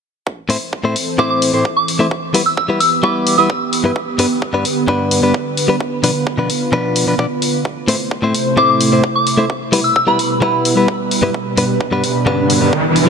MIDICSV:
0, 0, Header, 1, 6, 480
1, 0, Start_track
1, 0, Key_signature, 0, "minor"
1, 0, Tempo, 461538
1, 279, Time_signature, 4, 2, 24, 8
1, 13614, End_track
2, 0, Start_track
2, 0, Title_t, "Synth bell"
2, 0, Program_c, 0, 98
2, 1237, Note_on_c, 0, 86, 78
2, 1314, Note_off_c, 0, 86, 0
2, 1355, Note_on_c, 0, 86, 68
2, 1434, Note_off_c, 0, 86, 0
2, 1836, Note_on_c, 0, 86, 79
2, 2051, Note_off_c, 0, 86, 0
2, 2558, Note_on_c, 0, 88, 76
2, 2635, Note_off_c, 0, 88, 0
2, 2674, Note_on_c, 0, 88, 69
2, 2753, Note_off_c, 0, 88, 0
2, 2915, Note_on_c, 0, 88, 84
2, 3130, Note_off_c, 0, 88, 0
2, 3153, Note_on_c, 0, 86, 84
2, 3369, Note_off_c, 0, 86, 0
2, 3514, Note_on_c, 0, 88, 78
2, 3876, Note_off_c, 0, 88, 0
2, 8919, Note_on_c, 0, 86, 82
2, 8995, Note_off_c, 0, 86, 0
2, 9040, Note_on_c, 0, 86, 67
2, 9116, Note_off_c, 0, 86, 0
2, 9522, Note_on_c, 0, 86, 81
2, 9733, Note_off_c, 0, 86, 0
2, 10235, Note_on_c, 0, 88, 78
2, 10314, Note_off_c, 0, 88, 0
2, 10356, Note_on_c, 0, 88, 68
2, 10434, Note_off_c, 0, 88, 0
2, 10479, Note_on_c, 0, 83, 82
2, 10959, Note_off_c, 0, 83, 0
2, 13614, End_track
3, 0, Start_track
3, 0, Title_t, "Analog synth pad"
3, 0, Program_c, 1, 89
3, 280, Note_on_c, 1, 69, 64
3, 280, Note_on_c, 1, 72, 79
3, 281, Note_on_c, 1, 52, 69
3, 281, Note_on_c, 1, 60, 65
3, 2180, Note_off_c, 1, 69, 0
3, 2180, Note_off_c, 1, 72, 0
3, 2181, Note_off_c, 1, 60, 0
3, 2199, Note_on_c, 1, 59, 63
3, 2200, Note_on_c, 1, 67, 63
3, 2200, Note_on_c, 1, 71, 79
3, 4081, Note_off_c, 1, 52, 0
3, 4120, Note_on_c, 1, 50, 70
3, 6001, Note_off_c, 1, 67, 0
3, 6040, Note_on_c, 1, 65, 64
3, 7917, Note_off_c, 1, 59, 0
3, 7918, Note_off_c, 1, 71, 0
3, 7921, Note_off_c, 1, 50, 0
3, 7940, Note_off_c, 1, 65, 0
3, 7957, Note_on_c, 1, 48, 70
3, 7957, Note_on_c, 1, 57, 63
3, 7957, Note_on_c, 1, 64, 66
3, 7957, Note_on_c, 1, 72, 78
3, 9858, Note_off_c, 1, 48, 0
3, 9859, Note_off_c, 1, 57, 0
3, 9859, Note_off_c, 1, 72, 0
3, 9877, Note_on_c, 1, 47, 68
3, 9877, Note_on_c, 1, 55, 66
3, 9877, Note_on_c, 1, 71, 77
3, 11759, Note_off_c, 1, 64, 0
3, 11801, Note_on_c, 1, 62, 66
3, 13614, Note_off_c, 1, 47, 0
3, 13614, Note_off_c, 1, 55, 0
3, 13614, Note_off_c, 1, 62, 0
3, 13614, Note_off_c, 1, 71, 0
3, 13614, End_track
4, 0, Start_track
4, 0, Title_t, "Clean electric guitar"
4, 0, Program_c, 2, 27
4, 508, Note_on_c, 2, 45, 74
4, 513, Note_on_c, 2, 60, 63
4, 519, Note_on_c, 2, 57, 56
4, 522, Note_on_c, 2, 64, 64
4, 522, Note_on_c, 2, 72, 79
4, 578, Note_off_c, 2, 45, 0
4, 580, Note_off_c, 2, 57, 0
4, 581, Note_off_c, 2, 60, 0
4, 583, Note_off_c, 2, 64, 0
4, 585, Note_off_c, 2, 72, 0
4, 869, Note_on_c, 2, 45, 63
4, 875, Note_on_c, 2, 60, 54
4, 877, Note_on_c, 2, 57, 50
4, 882, Note_on_c, 2, 72, 71
4, 883, Note_on_c, 2, 64, 54
4, 977, Note_off_c, 2, 45, 0
4, 979, Note_off_c, 2, 57, 0
4, 980, Note_off_c, 2, 60, 0
4, 982, Note_off_c, 2, 64, 0
4, 983, Note_off_c, 2, 72, 0
4, 1230, Note_on_c, 2, 45, 70
4, 1234, Note_on_c, 2, 60, 78
4, 1237, Note_on_c, 2, 57, 69
4, 1242, Note_on_c, 2, 72, 88
4, 1243, Note_on_c, 2, 64, 67
4, 1566, Note_off_c, 2, 45, 0
4, 1567, Note_off_c, 2, 57, 0
4, 1568, Note_off_c, 2, 60, 0
4, 1570, Note_off_c, 2, 64, 0
4, 1572, Note_off_c, 2, 72, 0
4, 1591, Note_on_c, 2, 45, 71
4, 1597, Note_on_c, 2, 60, 59
4, 1598, Note_on_c, 2, 57, 55
4, 1604, Note_on_c, 2, 64, 52
4, 1604, Note_on_c, 2, 72, 76
4, 1698, Note_off_c, 2, 45, 0
4, 1700, Note_off_c, 2, 57, 0
4, 1702, Note_off_c, 2, 60, 0
4, 1703, Note_off_c, 2, 64, 0
4, 1704, Note_off_c, 2, 72, 0
4, 2072, Note_on_c, 2, 57, 69
4, 2080, Note_on_c, 2, 64, 68
4, 2081, Note_on_c, 2, 60, 60
4, 2090, Note_on_c, 2, 72, 67
4, 2140, Note_off_c, 2, 57, 0
4, 2142, Note_off_c, 2, 60, 0
4, 2145, Note_off_c, 2, 64, 0
4, 2146, Note_off_c, 2, 72, 0
4, 2433, Note_on_c, 2, 55, 72
4, 2438, Note_on_c, 2, 59, 67
4, 2440, Note_on_c, 2, 64, 67
4, 2449, Note_on_c, 2, 71, 72
4, 2500, Note_off_c, 2, 55, 0
4, 2502, Note_off_c, 2, 59, 0
4, 2505, Note_off_c, 2, 64, 0
4, 2506, Note_off_c, 2, 71, 0
4, 2792, Note_on_c, 2, 55, 61
4, 2801, Note_on_c, 2, 59, 52
4, 2801, Note_on_c, 2, 64, 59
4, 2806, Note_on_c, 2, 71, 69
4, 2899, Note_off_c, 2, 55, 0
4, 2900, Note_off_c, 2, 59, 0
4, 2903, Note_off_c, 2, 64, 0
4, 2905, Note_off_c, 2, 71, 0
4, 3153, Note_on_c, 2, 55, 82
4, 3160, Note_on_c, 2, 59, 73
4, 3160, Note_on_c, 2, 64, 76
4, 3165, Note_on_c, 2, 71, 90
4, 3487, Note_off_c, 2, 55, 0
4, 3489, Note_off_c, 2, 59, 0
4, 3491, Note_off_c, 2, 64, 0
4, 3493, Note_off_c, 2, 71, 0
4, 3512, Note_on_c, 2, 55, 70
4, 3517, Note_on_c, 2, 59, 64
4, 3519, Note_on_c, 2, 64, 64
4, 3529, Note_on_c, 2, 71, 68
4, 3618, Note_off_c, 2, 55, 0
4, 3621, Note_off_c, 2, 59, 0
4, 3623, Note_off_c, 2, 64, 0
4, 3625, Note_off_c, 2, 71, 0
4, 3992, Note_on_c, 2, 43, 73
4, 3998, Note_on_c, 2, 59, 68
4, 3999, Note_on_c, 2, 55, 61
4, 4002, Note_on_c, 2, 64, 61
4, 4009, Note_on_c, 2, 71, 75
4, 4060, Note_off_c, 2, 43, 0
4, 4061, Note_off_c, 2, 55, 0
4, 4063, Note_off_c, 2, 59, 0
4, 4065, Note_off_c, 2, 64, 0
4, 4066, Note_off_c, 2, 71, 0
4, 4351, Note_on_c, 2, 43, 69
4, 4359, Note_on_c, 2, 55, 61
4, 4361, Note_on_c, 2, 62, 63
4, 4364, Note_on_c, 2, 59, 58
4, 4365, Note_on_c, 2, 71, 78
4, 4420, Note_off_c, 2, 43, 0
4, 4422, Note_off_c, 2, 55, 0
4, 4423, Note_off_c, 2, 59, 0
4, 4425, Note_off_c, 2, 62, 0
4, 4426, Note_off_c, 2, 71, 0
4, 4711, Note_on_c, 2, 43, 67
4, 4719, Note_on_c, 2, 55, 56
4, 4720, Note_on_c, 2, 62, 57
4, 4721, Note_on_c, 2, 59, 54
4, 4724, Note_on_c, 2, 71, 74
4, 4818, Note_off_c, 2, 43, 0
4, 4819, Note_off_c, 2, 55, 0
4, 4821, Note_off_c, 2, 59, 0
4, 4823, Note_off_c, 2, 62, 0
4, 4824, Note_off_c, 2, 71, 0
4, 5071, Note_on_c, 2, 43, 81
4, 5080, Note_on_c, 2, 55, 60
4, 5080, Note_on_c, 2, 62, 73
4, 5082, Note_on_c, 2, 59, 67
4, 5085, Note_on_c, 2, 71, 87
4, 5407, Note_off_c, 2, 43, 0
4, 5408, Note_off_c, 2, 55, 0
4, 5410, Note_off_c, 2, 59, 0
4, 5411, Note_off_c, 2, 62, 0
4, 5413, Note_off_c, 2, 71, 0
4, 5429, Note_on_c, 2, 43, 70
4, 5438, Note_on_c, 2, 55, 57
4, 5439, Note_on_c, 2, 62, 66
4, 5443, Note_on_c, 2, 59, 56
4, 5444, Note_on_c, 2, 71, 77
4, 5537, Note_off_c, 2, 43, 0
4, 5539, Note_off_c, 2, 55, 0
4, 5541, Note_off_c, 2, 59, 0
4, 5542, Note_off_c, 2, 62, 0
4, 5544, Note_off_c, 2, 71, 0
4, 5909, Note_on_c, 2, 55, 77
4, 5919, Note_on_c, 2, 59, 58
4, 5919, Note_on_c, 2, 62, 65
4, 5923, Note_on_c, 2, 71, 80
4, 5979, Note_off_c, 2, 55, 0
4, 5981, Note_off_c, 2, 59, 0
4, 5983, Note_off_c, 2, 62, 0
4, 5985, Note_off_c, 2, 71, 0
4, 6271, Note_on_c, 2, 47, 66
4, 6277, Note_on_c, 2, 53, 59
4, 6279, Note_on_c, 2, 62, 65
4, 6282, Note_on_c, 2, 59, 62
4, 6284, Note_on_c, 2, 71, 80
4, 6340, Note_off_c, 2, 47, 0
4, 6341, Note_off_c, 2, 53, 0
4, 6342, Note_off_c, 2, 59, 0
4, 6344, Note_off_c, 2, 62, 0
4, 6345, Note_off_c, 2, 71, 0
4, 6631, Note_on_c, 2, 47, 67
4, 6641, Note_on_c, 2, 62, 54
4, 6642, Note_on_c, 2, 53, 55
4, 6643, Note_on_c, 2, 59, 52
4, 6646, Note_on_c, 2, 71, 72
4, 6738, Note_off_c, 2, 47, 0
4, 6740, Note_off_c, 2, 53, 0
4, 6742, Note_off_c, 2, 59, 0
4, 6743, Note_off_c, 2, 62, 0
4, 6745, Note_off_c, 2, 71, 0
4, 6991, Note_on_c, 2, 47, 78
4, 6997, Note_on_c, 2, 53, 64
4, 7000, Note_on_c, 2, 62, 75
4, 7002, Note_on_c, 2, 59, 63
4, 7004, Note_on_c, 2, 71, 93
4, 7326, Note_off_c, 2, 47, 0
4, 7328, Note_off_c, 2, 53, 0
4, 7330, Note_off_c, 2, 59, 0
4, 7331, Note_off_c, 2, 62, 0
4, 7332, Note_off_c, 2, 71, 0
4, 7350, Note_on_c, 2, 47, 75
4, 7359, Note_on_c, 2, 53, 61
4, 7360, Note_on_c, 2, 62, 67
4, 7361, Note_on_c, 2, 59, 55
4, 7365, Note_on_c, 2, 71, 85
4, 7420, Note_off_c, 2, 47, 0
4, 7421, Note_off_c, 2, 53, 0
4, 7423, Note_off_c, 2, 59, 0
4, 7424, Note_off_c, 2, 62, 0
4, 7426, Note_off_c, 2, 71, 0
4, 7471, Note_on_c, 2, 47, 71
4, 7477, Note_on_c, 2, 53, 58
4, 7478, Note_on_c, 2, 62, 70
4, 7480, Note_on_c, 2, 59, 56
4, 7484, Note_on_c, 2, 74, 81
4, 7540, Note_off_c, 2, 47, 0
4, 7540, Note_off_c, 2, 53, 0
4, 7542, Note_off_c, 2, 59, 0
4, 7544, Note_off_c, 2, 62, 0
4, 7545, Note_off_c, 2, 74, 0
4, 8192, Note_on_c, 2, 45, 69
4, 8198, Note_on_c, 2, 60, 73
4, 8201, Note_on_c, 2, 57, 57
4, 8206, Note_on_c, 2, 64, 61
4, 8206, Note_on_c, 2, 72, 83
4, 8260, Note_off_c, 2, 45, 0
4, 8262, Note_off_c, 2, 57, 0
4, 8264, Note_off_c, 2, 60, 0
4, 8265, Note_off_c, 2, 64, 0
4, 8267, Note_off_c, 2, 72, 0
4, 8552, Note_on_c, 2, 45, 68
4, 8560, Note_on_c, 2, 57, 56
4, 8560, Note_on_c, 2, 60, 62
4, 8567, Note_on_c, 2, 72, 73
4, 8570, Note_on_c, 2, 64, 47
4, 8659, Note_off_c, 2, 45, 0
4, 8661, Note_off_c, 2, 57, 0
4, 8662, Note_off_c, 2, 60, 0
4, 8664, Note_off_c, 2, 64, 0
4, 8665, Note_off_c, 2, 72, 0
4, 8911, Note_on_c, 2, 45, 82
4, 8917, Note_on_c, 2, 60, 79
4, 8918, Note_on_c, 2, 57, 63
4, 8925, Note_on_c, 2, 72, 91
4, 8926, Note_on_c, 2, 64, 72
4, 9247, Note_off_c, 2, 45, 0
4, 9248, Note_off_c, 2, 57, 0
4, 9250, Note_off_c, 2, 60, 0
4, 9251, Note_off_c, 2, 64, 0
4, 9253, Note_off_c, 2, 72, 0
4, 9272, Note_on_c, 2, 45, 71
4, 9278, Note_on_c, 2, 60, 62
4, 9280, Note_on_c, 2, 57, 55
4, 9286, Note_on_c, 2, 72, 81
4, 9287, Note_on_c, 2, 64, 62
4, 9379, Note_off_c, 2, 45, 0
4, 9380, Note_off_c, 2, 57, 0
4, 9382, Note_off_c, 2, 60, 0
4, 9384, Note_off_c, 2, 64, 0
4, 9385, Note_off_c, 2, 72, 0
4, 9750, Note_on_c, 2, 57, 71
4, 9759, Note_on_c, 2, 64, 64
4, 9760, Note_on_c, 2, 60, 55
4, 9769, Note_on_c, 2, 72, 65
4, 9820, Note_off_c, 2, 57, 0
4, 9822, Note_off_c, 2, 60, 0
4, 9824, Note_off_c, 2, 64, 0
4, 9826, Note_off_c, 2, 72, 0
4, 10111, Note_on_c, 2, 55, 74
4, 10118, Note_on_c, 2, 64, 67
4, 10120, Note_on_c, 2, 59, 58
4, 10123, Note_on_c, 2, 71, 81
4, 10179, Note_off_c, 2, 55, 0
4, 10181, Note_off_c, 2, 59, 0
4, 10183, Note_off_c, 2, 64, 0
4, 10185, Note_off_c, 2, 71, 0
4, 10471, Note_on_c, 2, 55, 68
4, 10476, Note_on_c, 2, 59, 60
4, 10480, Note_on_c, 2, 64, 60
4, 10485, Note_on_c, 2, 71, 73
4, 10578, Note_off_c, 2, 55, 0
4, 10580, Note_off_c, 2, 59, 0
4, 10582, Note_off_c, 2, 64, 0
4, 10585, Note_off_c, 2, 71, 0
4, 10832, Note_on_c, 2, 55, 82
4, 10840, Note_on_c, 2, 64, 74
4, 10841, Note_on_c, 2, 59, 67
4, 10845, Note_on_c, 2, 71, 91
4, 11167, Note_off_c, 2, 55, 0
4, 11169, Note_off_c, 2, 59, 0
4, 11171, Note_off_c, 2, 64, 0
4, 11173, Note_off_c, 2, 71, 0
4, 11191, Note_on_c, 2, 55, 67
4, 11199, Note_on_c, 2, 59, 59
4, 11199, Note_on_c, 2, 64, 65
4, 11204, Note_on_c, 2, 71, 79
4, 11298, Note_off_c, 2, 55, 0
4, 11300, Note_off_c, 2, 59, 0
4, 11302, Note_off_c, 2, 64, 0
4, 11304, Note_off_c, 2, 71, 0
4, 11671, Note_on_c, 2, 43, 77
4, 11676, Note_on_c, 2, 59, 70
4, 11678, Note_on_c, 2, 55, 61
4, 11684, Note_on_c, 2, 71, 78
4, 11685, Note_on_c, 2, 64, 61
4, 11739, Note_off_c, 2, 43, 0
4, 11741, Note_off_c, 2, 55, 0
4, 11742, Note_off_c, 2, 59, 0
4, 11744, Note_off_c, 2, 64, 0
4, 11746, Note_off_c, 2, 71, 0
4, 12031, Note_on_c, 2, 43, 70
4, 12040, Note_on_c, 2, 55, 59
4, 12041, Note_on_c, 2, 59, 62
4, 12041, Note_on_c, 2, 62, 70
4, 12045, Note_on_c, 2, 71, 84
4, 12099, Note_off_c, 2, 43, 0
4, 12101, Note_off_c, 2, 55, 0
4, 12103, Note_off_c, 2, 59, 0
4, 12105, Note_off_c, 2, 62, 0
4, 12106, Note_off_c, 2, 71, 0
4, 12391, Note_on_c, 2, 43, 68
4, 12398, Note_on_c, 2, 55, 55
4, 12400, Note_on_c, 2, 62, 65
4, 12402, Note_on_c, 2, 59, 54
4, 12403, Note_on_c, 2, 71, 73
4, 12498, Note_off_c, 2, 43, 0
4, 12500, Note_off_c, 2, 55, 0
4, 12501, Note_off_c, 2, 59, 0
4, 12503, Note_off_c, 2, 62, 0
4, 12504, Note_off_c, 2, 71, 0
4, 12750, Note_on_c, 2, 43, 85
4, 12753, Note_on_c, 2, 55, 77
4, 12759, Note_on_c, 2, 62, 81
4, 12761, Note_on_c, 2, 59, 73
4, 12767, Note_on_c, 2, 71, 81
4, 13086, Note_off_c, 2, 43, 0
4, 13088, Note_off_c, 2, 55, 0
4, 13089, Note_off_c, 2, 59, 0
4, 13091, Note_off_c, 2, 62, 0
4, 13092, Note_off_c, 2, 71, 0
4, 13111, Note_on_c, 2, 43, 75
4, 13119, Note_on_c, 2, 55, 59
4, 13119, Note_on_c, 2, 62, 69
4, 13122, Note_on_c, 2, 59, 49
4, 13124, Note_on_c, 2, 71, 78
4, 13218, Note_off_c, 2, 43, 0
4, 13220, Note_off_c, 2, 55, 0
4, 13221, Note_off_c, 2, 59, 0
4, 13222, Note_off_c, 2, 62, 0
4, 13224, Note_off_c, 2, 71, 0
4, 13614, End_track
5, 0, Start_track
5, 0, Title_t, "Riser"
5, 0, Program_c, 3, 103
5, 11798, Note_on_c, 3, 60, 67
5, 13614, Note_off_c, 3, 60, 0
5, 13614, End_track
6, 0, Start_track
6, 0, Title_t, "Drums"
6, 277, Note_on_c, 9, 36, 103
6, 381, Note_off_c, 9, 36, 0
6, 517, Note_on_c, 9, 46, 89
6, 621, Note_off_c, 9, 46, 0
6, 757, Note_on_c, 9, 36, 103
6, 861, Note_off_c, 9, 36, 0
6, 998, Note_on_c, 9, 46, 81
6, 1102, Note_off_c, 9, 46, 0
6, 1237, Note_on_c, 9, 36, 105
6, 1341, Note_off_c, 9, 36, 0
6, 1477, Note_on_c, 9, 46, 94
6, 1581, Note_off_c, 9, 46, 0
6, 1717, Note_on_c, 9, 36, 106
6, 1821, Note_off_c, 9, 36, 0
6, 1959, Note_on_c, 9, 46, 80
6, 2063, Note_off_c, 9, 46, 0
6, 2197, Note_on_c, 9, 36, 110
6, 2301, Note_off_c, 9, 36, 0
6, 2438, Note_on_c, 9, 46, 96
6, 2542, Note_off_c, 9, 46, 0
6, 2677, Note_on_c, 9, 36, 111
6, 2781, Note_off_c, 9, 36, 0
6, 2917, Note_on_c, 9, 46, 84
6, 3021, Note_off_c, 9, 46, 0
6, 3157, Note_on_c, 9, 36, 111
6, 3261, Note_off_c, 9, 36, 0
6, 3397, Note_on_c, 9, 46, 98
6, 3501, Note_off_c, 9, 46, 0
6, 3637, Note_on_c, 9, 36, 110
6, 3741, Note_off_c, 9, 36, 0
6, 3877, Note_on_c, 9, 46, 85
6, 3981, Note_off_c, 9, 46, 0
6, 4117, Note_on_c, 9, 36, 113
6, 4221, Note_off_c, 9, 36, 0
6, 4356, Note_on_c, 9, 46, 98
6, 4460, Note_off_c, 9, 46, 0
6, 4597, Note_on_c, 9, 36, 113
6, 4701, Note_off_c, 9, 36, 0
6, 4837, Note_on_c, 9, 46, 88
6, 4941, Note_off_c, 9, 46, 0
6, 5077, Note_on_c, 9, 36, 118
6, 5181, Note_off_c, 9, 36, 0
6, 5318, Note_on_c, 9, 46, 100
6, 5422, Note_off_c, 9, 46, 0
6, 5557, Note_on_c, 9, 36, 114
6, 5661, Note_off_c, 9, 36, 0
6, 5797, Note_on_c, 9, 46, 84
6, 5901, Note_off_c, 9, 46, 0
6, 6037, Note_on_c, 9, 36, 112
6, 6141, Note_off_c, 9, 36, 0
6, 6278, Note_on_c, 9, 46, 99
6, 6382, Note_off_c, 9, 46, 0
6, 6518, Note_on_c, 9, 36, 110
6, 6622, Note_off_c, 9, 36, 0
6, 6757, Note_on_c, 9, 46, 84
6, 6861, Note_off_c, 9, 46, 0
6, 6998, Note_on_c, 9, 36, 115
6, 7102, Note_off_c, 9, 36, 0
6, 7236, Note_on_c, 9, 46, 96
6, 7340, Note_off_c, 9, 46, 0
6, 7478, Note_on_c, 9, 36, 111
6, 7582, Note_off_c, 9, 36, 0
6, 7718, Note_on_c, 9, 46, 85
6, 7822, Note_off_c, 9, 46, 0
6, 7958, Note_on_c, 9, 36, 105
6, 8062, Note_off_c, 9, 36, 0
6, 8199, Note_on_c, 9, 46, 97
6, 8303, Note_off_c, 9, 46, 0
6, 8438, Note_on_c, 9, 36, 113
6, 8542, Note_off_c, 9, 36, 0
6, 8679, Note_on_c, 9, 46, 81
6, 8783, Note_off_c, 9, 46, 0
6, 8917, Note_on_c, 9, 36, 110
6, 9021, Note_off_c, 9, 36, 0
6, 9158, Note_on_c, 9, 46, 95
6, 9262, Note_off_c, 9, 46, 0
6, 9397, Note_on_c, 9, 36, 107
6, 9501, Note_off_c, 9, 36, 0
6, 9637, Note_on_c, 9, 46, 85
6, 9741, Note_off_c, 9, 46, 0
6, 9877, Note_on_c, 9, 36, 103
6, 9981, Note_off_c, 9, 36, 0
6, 10118, Note_on_c, 9, 46, 93
6, 10222, Note_off_c, 9, 46, 0
6, 10358, Note_on_c, 9, 36, 104
6, 10462, Note_off_c, 9, 36, 0
6, 10599, Note_on_c, 9, 46, 77
6, 10703, Note_off_c, 9, 46, 0
6, 10838, Note_on_c, 9, 36, 108
6, 10942, Note_off_c, 9, 36, 0
6, 11078, Note_on_c, 9, 46, 94
6, 11182, Note_off_c, 9, 46, 0
6, 11318, Note_on_c, 9, 36, 102
6, 11422, Note_off_c, 9, 36, 0
6, 11558, Note_on_c, 9, 46, 80
6, 11662, Note_off_c, 9, 46, 0
6, 11798, Note_on_c, 9, 36, 103
6, 11902, Note_off_c, 9, 36, 0
6, 12038, Note_on_c, 9, 46, 91
6, 12142, Note_off_c, 9, 46, 0
6, 12278, Note_on_c, 9, 36, 107
6, 12382, Note_off_c, 9, 36, 0
6, 12518, Note_on_c, 9, 46, 79
6, 12622, Note_off_c, 9, 46, 0
6, 12758, Note_on_c, 9, 36, 106
6, 12862, Note_off_c, 9, 36, 0
6, 12998, Note_on_c, 9, 46, 93
6, 13102, Note_off_c, 9, 46, 0
6, 13238, Note_on_c, 9, 36, 104
6, 13342, Note_off_c, 9, 36, 0
6, 13477, Note_on_c, 9, 46, 77
6, 13581, Note_off_c, 9, 46, 0
6, 13614, End_track
0, 0, End_of_file